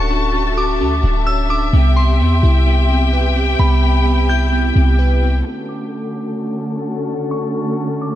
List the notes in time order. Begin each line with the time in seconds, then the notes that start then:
Already playing: D1 C#4 F#4 A4 C#5 E5 A5 C#6
0.10 D4
0.34 C#4
0.57 F#4 D6
0.80 D2 C#4
1.03 D1 D4
1.26 C#5 E6
1.49 D4 D6
1.73 C2 B3 G4 G5
1.96 C4 C6
2.20 E2 B3
2.43 C2 E4
2.66 B3
2.90 C4
3.13 B4
3.36 C4
3.59 C2 B3 B5
3.82 C4
4.05 B3
4.29 E4 G6
4.52 B3
4.76 C2 C4
4.99 B4
5.23 C4
5.45 D3 A3 C#4 F#4 A4
5.69 D6
7.31 C#6
8.02 D6